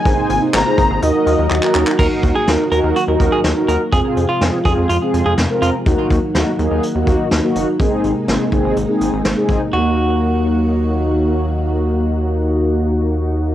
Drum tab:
CC |----------------|x---------------|----------------|----------------|
HH |x-x-x-x-x-x-----|--x-x-x-x-x-x-x-|x-x-x-x-x-x-x-x-|x-x-x-x-x-x-x-x-|
CP |----x-------xxxx|----------------|----------------|----------------|
SD |----o-----------|----o-------o---|----o-------o---|----o-------o---|
BD |o-----o---------|o-o-------o-----|o-----o---------|o-o-------o-----|

CC |----------------|----------------|----------------|
HH |x-x-x-x-x-x-x-x-|----------------|----------------|
CP |----------------|----------------|----------------|
SD |----o-------o---|----------------|----------------|
BD |o-----o-------o-|----------------|----------------|